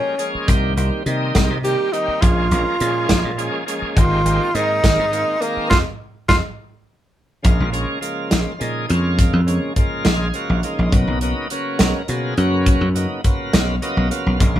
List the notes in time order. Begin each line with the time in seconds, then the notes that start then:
Already playing: F3 G#3 A#3 C#4 G4
0.18 F3 G#3 A#3 C#4 G#4, closed hi-hat
0.35 muted slap bass stroke
0.47 C2 D#3 G3 A#3 C4 G4, kick, closed hi-hat
0.76 C2 D#3 G3 A#3 C4 G4, closed hi-hat
1.06 C3 D#3 G3 A#3 C4 D#4, closed hi-hat
1.35 C2, kick, snare, closed hi-hat
1.50 C3
1.63 D#3 G3 A#3 C4 G4, closed hi-hat
1.92 D#3 G3 A#3 C4 D#4 G4, closed hi-hat
2.08 muted slap bass stroke
2.21 A#1 F3 G#3 A#3 C#4 F4 G#4, kick, closed hi-hat
2.50 A#1 F3 G#3 A#3 C#4 A#4, closed hi-hat
2.79 A#2 F3 G#3 A#3 C#4 G#4, closed hi-hat
3.09 A#1, kick, snare, closed hi-hat
3.25 A#2
3.37 F3 G#3 A#3 C#4 G#4, closed hi-hat
3.66 F3 G#3 A#3 C#4 G#4, closed hi-hat
3.82 muted slap bass stroke
3.95 G#1 D#3 G#3 A#3 C4 F4 G4, kick, closed hi-hat
4.24 G#1 D#3 G#3 A#3 C4 G4, closed hi-hat
4.54 G#2 D#3 G#3 A#3 C4 D#4 A#4, closed hi-hat
4.84 G#1, kick, snare, closed hi-hat
4.99 G#2
5.11 D#3 G#3 A#3 C4 F4, closed hi-hat
5.40 D#3 G#3 A#3 C4 A#4, closed hi-hat
5.57 muted slap bass stroke
5.70 F2 F3 A3 C4 F4, kick, snare
6.28 F2 F3 A3 C4 F4, kick, snare
7.43 A#1 C#3 F3 G#3 A#3 F4, kick, closed hi-hat
7.60 A#1
7.72 C#3 F3 G#3 A#3 C#4, closed hi-hat
8.00 C#3 F3 G#3 A#3 F4, closed hi-hat
8.31 A#1 F4, snare, closed hi-hat
8.58 A#2 C#3 F3 G#3 A#3 G#4, closed hi-hat
8.63 D#4
8.88 F2 C#3 F3 G#3 A#3 C#4 F4, closed hi-hat
9.19 kick, closed hi-hat
9.33 F2
9.46 C#3 F3 G#3 A#3 C#4, closed hi-hat
9.76 C#3 F3 G#3 A#3 F4, kick, closed hi-hat
10.05 A#1 G#4, snare, closed hi-hat
10.33 C#3 F3 G#3 A#3 F4 F#4, closed hi-hat
10.50 A#1
10.63 C#3 F3 G#3 A#3 D#4 F4, closed hi-hat
10.79 A#1
10.92 B1 C#3 F#3 A#3 B3 D#4, kick, closed hi-hat
11.07 B1
11.21 C#3 F#3 A#3 B3 D#4, closed hi-hat
11.50 C#3 F#3 A#3 B3 C#4, closed hi-hat
11.79 B1 A#4, snare, closed hi-hat
12.07 B2 C#3 F#3 A#3 B3 F4 G#4, closed hi-hat
12.37 F#2 C#3 F#3 A#3 B3 C#4 F#4, closed hi-hat
12.66 kick, closed hi-hat
12.81 F#2
12.94 C#3 F#3 A#3 B3 D#4, closed hi-hat
13.24 C#3 F#3 A#3 B3 F4, kick, closed hi-hat
13.53 B1, snare, closed hi-hat
13.82 C#3 F#3 A#3 B3 F4 D#5, closed hi-hat
13.97 B1
14.10 C#3 F#3 A#3 B3 F4 F5, closed hi-hat
14.26 B1
14.39 A#1 C#3 F3 G#3 A#3 F4, kick, closed hi-hat
14.55 A#1